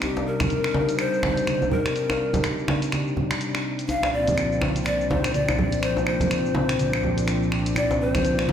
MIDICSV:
0, 0, Header, 1, 5, 480
1, 0, Start_track
1, 0, Tempo, 483871
1, 21, Time_signature, 4, 2, 24, 8
1, 8455, End_track
2, 0, Start_track
2, 0, Title_t, "Pan flute"
2, 0, Program_c, 0, 75
2, 17, Note_on_c, 0, 67, 92
2, 260, Note_on_c, 0, 70, 105
2, 275, Note_off_c, 0, 67, 0
2, 981, Note_on_c, 0, 72, 114
2, 995, Note_off_c, 0, 70, 0
2, 1701, Note_on_c, 0, 70, 94
2, 1716, Note_off_c, 0, 72, 0
2, 2421, Note_off_c, 0, 70, 0
2, 3861, Note_on_c, 0, 77, 117
2, 4100, Note_on_c, 0, 74, 101
2, 4115, Note_off_c, 0, 77, 0
2, 4580, Note_off_c, 0, 74, 0
2, 4815, Note_on_c, 0, 74, 107
2, 5058, Note_on_c, 0, 72, 96
2, 5073, Note_off_c, 0, 74, 0
2, 5295, Note_on_c, 0, 74, 101
2, 5310, Note_off_c, 0, 72, 0
2, 5774, Note_on_c, 0, 72, 105
2, 5789, Note_off_c, 0, 74, 0
2, 6010, Note_off_c, 0, 72, 0
2, 6016, Note_on_c, 0, 72, 101
2, 7419, Note_off_c, 0, 72, 0
2, 7701, Note_on_c, 0, 74, 107
2, 7924, Note_off_c, 0, 74, 0
2, 7943, Note_on_c, 0, 72, 107
2, 8388, Note_off_c, 0, 72, 0
2, 8455, End_track
3, 0, Start_track
3, 0, Title_t, "Analog synth pad"
3, 0, Program_c, 1, 89
3, 0, Note_on_c, 1, 48, 76
3, 0, Note_on_c, 1, 55, 72
3, 0, Note_on_c, 1, 62, 86
3, 0, Note_on_c, 1, 63, 89
3, 3820, Note_off_c, 1, 48, 0
3, 3820, Note_off_c, 1, 63, 0
3, 3821, Note_off_c, 1, 55, 0
3, 3822, Note_off_c, 1, 62, 0
3, 3862, Note_on_c, 1, 53, 73
3, 3863, Note_on_c, 1, 62, 90
3, 3864, Note_on_c, 1, 60, 72
3, 3865, Note_on_c, 1, 36, 81
3, 3865, Note_on_c, 1, 46, 74
3, 8455, Note_off_c, 1, 36, 0
3, 8455, Note_off_c, 1, 46, 0
3, 8455, Note_off_c, 1, 53, 0
3, 8455, Note_off_c, 1, 60, 0
3, 8455, Note_off_c, 1, 62, 0
3, 8455, End_track
4, 0, Start_track
4, 0, Title_t, "Djembe"
4, 27, Note_on_c, 9, 63, 55
4, 126, Note_off_c, 9, 63, 0
4, 166, Note_on_c, 9, 62, 70
4, 265, Note_off_c, 9, 62, 0
4, 402, Note_on_c, 9, 63, 78
4, 501, Note_off_c, 9, 63, 0
4, 738, Note_on_c, 9, 62, 102
4, 837, Note_off_c, 9, 62, 0
4, 1220, Note_on_c, 9, 62, 103
4, 1221, Note_on_c, 9, 63, 60
4, 1319, Note_off_c, 9, 62, 0
4, 1320, Note_off_c, 9, 63, 0
4, 1607, Note_on_c, 9, 63, 95
4, 1706, Note_off_c, 9, 63, 0
4, 2079, Note_on_c, 9, 62, 72
4, 2178, Note_off_c, 9, 62, 0
4, 2315, Note_on_c, 9, 63, 83
4, 2321, Note_on_c, 9, 62, 84
4, 2414, Note_off_c, 9, 63, 0
4, 2420, Note_off_c, 9, 62, 0
4, 2663, Note_on_c, 9, 62, 99
4, 2762, Note_off_c, 9, 62, 0
4, 3855, Note_on_c, 9, 63, 58
4, 3955, Note_off_c, 9, 63, 0
4, 3998, Note_on_c, 9, 62, 72
4, 4097, Note_off_c, 9, 62, 0
4, 4249, Note_on_c, 9, 63, 69
4, 4348, Note_off_c, 9, 63, 0
4, 4576, Note_on_c, 9, 62, 102
4, 4675, Note_off_c, 9, 62, 0
4, 5065, Note_on_c, 9, 62, 105
4, 5067, Note_on_c, 9, 63, 55
4, 5165, Note_off_c, 9, 62, 0
4, 5166, Note_off_c, 9, 63, 0
4, 5441, Note_on_c, 9, 63, 95
4, 5541, Note_off_c, 9, 63, 0
4, 5918, Note_on_c, 9, 62, 69
4, 6017, Note_off_c, 9, 62, 0
4, 6153, Note_on_c, 9, 63, 74
4, 6253, Note_off_c, 9, 63, 0
4, 6494, Note_on_c, 9, 62, 107
4, 6593, Note_off_c, 9, 62, 0
4, 7695, Note_on_c, 9, 63, 57
4, 7794, Note_off_c, 9, 63, 0
4, 7843, Note_on_c, 9, 62, 76
4, 7942, Note_off_c, 9, 62, 0
4, 8083, Note_on_c, 9, 63, 75
4, 8182, Note_off_c, 9, 63, 0
4, 8420, Note_on_c, 9, 62, 98
4, 8455, Note_off_c, 9, 62, 0
4, 8455, End_track
5, 0, Start_track
5, 0, Title_t, "Drums"
5, 17, Note_on_c, 9, 26, 73
5, 17, Note_on_c, 9, 42, 40
5, 22, Note_on_c, 9, 82, 66
5, 116, Note_off_c, 9, 26, 0
5, 116, Note_off_c, 9, 42, 0
5, 121, Note_off_c, 9, 82, 0
5, 161, Note_on_c, 9, 82, 40
5, 260, Note_off_c, 9, 82, 0
5, 397, Note_on_c, 9, 26, 91
5, 397, Note_on_c, 9, 42, 54
5, 402, Note_on_c, 9, 82, 85
5, 403, Note_on_c, 9, 64, 92
5, 406, Note_on_c, 9, 63, 73
5, 497, Note_off_c, 9, 26, 0
5, 497, Note_off_c, 9, 42, 0
5, 498, Note_on_c, 9, 42, 43
5, 501, Note_off_c, 9, 82, 0
5, 502, Note_off_c, 9, 64, 0
5, 503, Note_on_c, 9, 82, 68
5, 505, Note_off_c, 9, 63, 0
5, 598, Note_off_c, 9, 42, 0
5, 602, Note_off_c, 9, 82, 0
5, 638, Note_on_c, 9, 26, 88
5, 643, Note_on_c, 9, 82, 39
5, 737, Note_off_c, 9, 26, 0
5, 740, Note_on_c, 9, 63, 83
5, 742, Note_off_c, 9, 82, 0
5, 839, Note_off_c, 9, 63, 0
5, 879, Note_on_c, 9, 42, 52
5, 884, Note_on_c, 9, 82, 82
5, 978, Note_off_c, 9, 42, 0
5, 979, Note_on_c, 9, 26, 80
5, 979, Note_on_c, 9, 42, 43
5, 983, Note_off_c, 9, 82, 0
5, 983, Note_on_c, 9, 82, 68
5, 1078, Note_off_c, 9, 26, 0
5, 1078, Note_off_c, 9, 42, 0
5, 1082, Note_off_c, 9, 82, 0
5, 1125, Note_on_c, 9, 82, 40
5, 1220, Note_on_c, 9, 26, 99
5, 1220, Note_on_c, 9, 64, 75
5, 1224, Note_off_c, 9, 82, 0
5, 1227, Note_on_c, 9, 63, 65
5, 1319, Note_off_c, 9, 64, 0
5, 1320, Note_off_c, 9, 26, 0
5, 1326, Note_off_c, 9, 63, 0
5, 1363, Note_on_c, 9, 42, 52
5, 1367, Note_on_c, 9, 82, 82
5, 1462, Note_off_c, 9, 42, 0
5, 1462, Note_on_c, 9, 26, 74
5, 1462, Note_on_c, 9, 42, 41
5, 1463, Note_on_c, 9, 63, 68
5, 1466, Note_off_c, 9, 82, 0
5, 1466, Note_on_c, 9, 82, 66
5, 1561, Note_off_c, 9, 26, 0
5, 1561, Note_off_c, 9, 42, 0
5, 1562, Note_off_c, 9, 63, 0
5, 1565, Note_off_c, 9, 82, 0
5, 1607, Note_on_c, 9, 82, 41
5, 1701, Note_on_c, 9, 64, 93
5, 1706, Note_off_c, 9, 82, 0
5, 1800, Note_off_c, 9, 64, 0
5, 1842, Note_on_c, 9, 26, 86
5, 1842, Note_on_c, 9, 42, 49
5, 1846, Note_on_c, 9, 82, 75
5, 1941, Note_off_c, 9, 26, 0
5, 1941, Note_off_c, 9, 42, 0
5, 1941, Note_on_c, 9, 42, 41
5, 1945, Note_off_c, 9, 82, 0
5, 1945, Note_on_c, 9, 82, 62
5, 2040, Note_off_c, 9, 42, 0
5, 2044, Note_off_c, 9, 82, 0
5, 2080, Note_on_c, 9, 26, 85
5, 2085, Note_on_c, 9, 82, 40
5, 2180, Note_off_c, 9, 26, 0
5, 2184, Note_off_c, 9, 82, 0
5, 2320, Note_on_c, 9, 42, 53
5, 2320, Note_on_c, 9, 64, 85
5, 2324, Note_on_c, 9, 63, 60
5, 2325, Note_on_c, 9, 82, 83
5, 2419, Note_off_c, 9, 42, 0
5, 2419, Note_off_c, 9, 64, 0
5, 2419, Note_on_c, 9, 26, 80
5, 2419, Note_on_c, 9, 42, 42
5, 2423, Note_off_c, 9, 63, 0
5, 2423, Note_off_c, 9, 82, 0
5, 2423, Note_on_c, 9, 82, 68
5, 2518, Note_off_c, 9, 26, 0
5, 2518, Note_off_c, 9, 42, 0
5, 2522, Note_off_c, 9, 82, 0
5, 2564, Note_on_c, 9, 82, 38
5, 2659, Note_on_c, 9, 63, 88
5, 2660, Note_on_c, 9, 26, 89
5, 2663, Note_off_c, 9, 82, 0
5, 2758, Note_off_c, 9, 63, 0
5, 2760, Note_off_c, 9, 26, 0
5, 2800, Note_on_c, 9, 42, 55
5, 2804, Note_on_c, 9, 82, 82
5, 2899, Note_off_c, 9, 42, 0
5, 2900, Note_on_c, 9, 26, 76
5, 2900, Note_on_c, 9, 42, 44
5, 2903, Note_off_c, 9, 82, 0
5, 2904, Note_on_c, 9, 82, 65
5, 2908, Note_on_c, 9, 63, 65
5, 2999, Note_off_c, 9, 26, 0
5, 2999, Note_off_c, 9, 42, 0
5, 3003, Note_off_c, 9, 82, 0
5, 3007, Note_off_c, 9, 63, 0
5, 3045, Note_on_c, 9, 82, 41
5, 3141, Note_on_c, 9, 63, 60
5, 3144, Note_on_c, 9, 64, 75
5, 3145, Note_off_c, 9, 82, 0
5, 3240, Note_off_c, 9, 63, 0
5, 3243, Note_off_c, 9, 64, 0
5, 3281, Note_on_c, 9, 26, 89
5, 3281, Note_on_c, 9, 42, 54
5, 3285, Note_on_c, 9, 82, 82
5, 3380, Note_off_c, 9, 26, 0
5, 3380, Note_off_c, 9, 42, 0
5, 3381, Note_on_c, 9, 42, 41
5, 3384, Note_off_c, 9, 82, 0
5, 3385, Note_on_c, 9, 82, 65
5, 3480, Note_off_c, 9, 42, 0
5, 3484, Note_off_c, 9, 82, 0
5, 3519, Note_on_c, 9, 26, 86
5, 3523, Note_on_c, 9, 82, 40
5, 3618, Note_off_c, 9, 26, 0
5, 3622, Note_off_c, 9, 82, 0
5, 3759, Note_on_c, 9, 42, 49
5, 3764, Note_on_c, 9, 82, 72
5, 3858, Note_off_c, 9, 42, 0
5, 3858, Note_on_c, 9, 42, 44
5, 3862, Note_off_c, 9, 82, 0
5, 3862, Note_on_c, 9, 82, 61
5, 3957, Note_off_c, 9, 42, 0
5, 3961, Note_off_c, 9, 82, 0
5, 4001, Note_on_c, 9, 26, 82
5, 4006, Note_on_c, 9, 82, 37
5, 4101, Note_off_c, 9, 26, 0
5, 4105, Note_off_c, 9, 82, 0
5, 4241, Note_on_c, 9, 42, 57
5, 4241, Note_on_c, 9, 63, 60
5, 4245, Note_on_c, 9, 82, 79
5, 4247, Note_on_c, 9, 64, 84
5, 4340, Note_off_c, 9, 42, 0
5, 4340, Note_off_c, 9, 63, 0
5, 4341, Note_on_c, 9, 26, 75
5, 4341, Note_on_c, 9, 42, 44
5, 4344, Note_off_c, 9, 82, 0
5, 4345, Note_on_c, 9, 82, 65
5, 4346, Note_off_c, 9, 64, 0
5, 4440, Note_off_c, 9, 26, 0
5, 4440, Note_off_c, 9, 42, 0
5, 4444, Note_off_c, 9, 82, 0
5, 4485, Note_on_c, 9, 82, 39
5, 4579, Note_on_c, 9, 26, 88
5, 4582, Note_on_c, 9, 63, 84
5, 4584, Note_off_c, 9, 82, 0
5, 4678, Note_off_c, 9, 26, 0
5, 4682, Note_off_c, 9, 63, 0
5, 4721, Note_on_c, 9, 42, 55
5, 4725, Note_on_c, 9, 82, 78
5, 4820, Note_off_c, 9, 42, 0
5, 4820, Note_on_c, 9, 26, 73
5, 4820, Note_on_c, 9, 42, 43
5, 4824, Note_off_c, 9, 82, 0
5, 4824, Note_on_c, 9, 82, 67
5, 4919, Note_off_c, 9, 26, 0
5, 4919, Note_off_c, 9, 42, 0
5, 4923, Note_off_c, 9, 82, 0
5, 4966, Note_on_c, 9, 82, 40
5, 5058, Note_on_c, 9, 63, 57
5, 5063, Note_on_c, 9, 64, 74
5, 5065, Note_off_c, 9, 82, 0
5, 5157, Note_off_c, 9, 63, 0
5, 5163, Note_off_c, 9, 64, 0
5, 5202, Note_on_c, 9, 26, 88
5, 5202, Note_on_c, 9, 42, 57
5, 5206, Note_on_c, 9, 82, 75
5, 5301, Note_off_c, 9, 26, 0
5, 5301, Note_off_c, 9, 42, 0
5, 5301, Note_on_c, 9, 42, 42
5, 5305, Note_off_c, 9, 82, 0
5, 5305, Note_on_c, 9, 63, 66
5, 5305, Note_on_c, 9, 82, 59
5, 5400, Note_off_c, 9, 42, 0
5, 5404, Note_off_c, 9, 63, 0
5, 5404, Note_off_c, 9, 82, 0
5, 5441, Note_on_c, 9, 26, 86
5, 5446, Note_on_c, 9, 82, 40
5, 5541, Note_off_c, 9, 26, 0
5, 5542, Note_on_c, 9, 64, 96
5, 5545, Note_off_c, 9, 82, 0
5, 5641, Note_off_c, 9, 64, 0
5, 5679, Note_on_c, 9, 42, 50
5, 5683, Note_on_c, 9, 82, 73
5, 5778, Note_off_c, 9, 42, 0
5, 5781, Note_on_c, 9, 26, 73
5, 5781, Note_on_c, 9, 42, 42
5, 5782, Note_off_c, 9, 82, 0
5, 5785, Note_on_c, 9, 82, 58
5, 5880, Note_off_c, 9, 26, 0
5, 5880, Note_off_c, 9, 42, 0
5, 5885, Note_off_c, 9, 82, 0
5, 5927, Note_on_c, 9, 82, 36
5, 6018, Note_on_c, 9, 26, 83
5, 6026, Note_off_c, 9, 82, 0
5, 6117, Note_off_c, 9, 26, 0
5, 6155, Note_on_c, 9, 63, 57
5, 6155, Note_on_c, 9, 64, 88
5, 6159, Note_on_c, 9, 42, 55
5, 6164, Note_on_c, 9, 82, 78
5, 6254, Note_off_c, 9, 63, 0
5, 6254, Note_off_c, 9, 64, 0
5, 6258, Note_off_c, 9, 42, 0
5, 6259, Note_on_c, 9, 26, 76
5, 6259, Note_on_c, 9, 42, 47
5, 6263, Note_off_c, 9, 82, 0
5, 6263, Note_on_c, 9, 82, 66
5, 6358, Note_off_c, 9, 26, 0
5, 6358, Note_off_c, 9, 42, 0
5, 6363, Note_off_c, 9, 82, 0
5, 6404, Note_on_c, 9, 82, 37
5, 6494, Note_on_c, 9, 63, 87
5, 6503, Note_off_c, 9, 82, 0
5, 6593, Note_off_c, 9, 63, 0
5, 6639, Note_on_c, 9, 26, 90
5, 6639, Note_on_c, 9, 42, 55
5, 6643, Note_on_c, 9, 82, 74
5, 6738, Note_off_c, 9, 26, 0
5, 6738, Note_off_c, 9, 42, 0
5, 6740, Note_on_c, 9, 42, 44
5, 6741, Note_on_c, 9, 63, 67
5, 6743, Note_off_c, 9, 82, 0
5, 6744, Note_on_c, 9, 82, 64
5, 6839, Note_off_c, 9, 42, 0
5, 6841, Note_off_c, 9, 63, 0
5, 6844, Note_off_c, 9, 82, 0
5, 6879, Note_on_c, 9, 26, 92
5, 6883, Note_on_c, 9, 82, 37
5, 6978, Note_off_c, 9, 26, 0
5, 6979, Note_on_c, 9, 64, 74
5, 6982, Note_off_c, 9, 82, 0
5, 6985, Note_on_c, 9, 63, 55
5, 7078, Note_off_c, 9, 64, 0
5, 7084, Note_off_c, 9, 63, 0
5, 7120, Note_on_c, 9, 42, 58
5, 7124, Note_on_c, 9, 82, 75
5, 7218, Note_off_c, 9, 42, 0
5, 7218, Note_on_c, 9, 26, 69
5, 7218, Note_on_c, 9, 42, 43
5, 7222, Note_off_c, 9, 82, 0
5, 7222, Note_on_c, 9, 82, 62
5, 7317, Note_off_c, 9, 26, 0
5, 7317, Note_off_c, 9, 42, 0
5, 7321, Note_off_c, 9, 82, 0
5, 7365, Note_on_c, 9, 82, 37
5, 7460, Note_on_c, 9, 26, 79
5, 7464, Note_off_c, 9, 82, 0
5, 7559, Note_off_c, 9, 26, 0
5, 7601, Note_on_c, 9, 42, 54
5, 7606, Note_on_c, 9, 82, 70
5, 7700, Note_off_c, 9, 42, 0
5, 7700, Note_on_c, 9, 26, 73
5, 7700, Note_on_c, 9, 42, 45
5, 7704, Note_off_c, 9, 82, 0
5, 7704, Note_on_c, 9, 82, 59
5, 7799, Note_off_c, 9, 26, 0
5, 7799, Note_off_c, 9, 42, 0
5, 7803, Note_off_c, 9, 82, 0
5, 7845, Note_on_c, 9, 82, 35
5, 7944, Note_off_c, 9, 82, 0
5, 8082, Note_on_c, 9, 26, 88
5, 8082, Note_on_c, 9, 42, 58
5, 8084, Note_on_c, 9, 63, 58
5, 8086, Note_on_c, 9, 82, 76
5, 8087, Note_on_c, 9, 64, 89
5, 8180, Note_off_c, 9, 42, 0
5, 8180, Note_on_c, 9, 42, 45
5, 8181, Note_off_c, 9, 26, 0
5, 8183, Note_off_c, 9, 63, 0
5, 8185, Note_off_c, 9, 82, 0
5, 8185, Note_on_c, 9, 82, 61
5, 8186, Note_off_c, 9, 64, 0
5, 8279, Note_off_c, 9, 42, 0
5, 8284, Note_off_c, 9, 82, 0
5, 8321, Note_on_c, 9, 26, 90
5, 8325, Note_on_c, 9, 82, 37
5, 8417, Note_on_c, 9, 63, 78
5, 8420, Note_off_c, 9, 26, 0
5, 8425, Note_off_c, 9, 82, 0
5, 8455, Note_off_c, 9, 63, 0
5, 8455, End_track
0, 0, End_of_file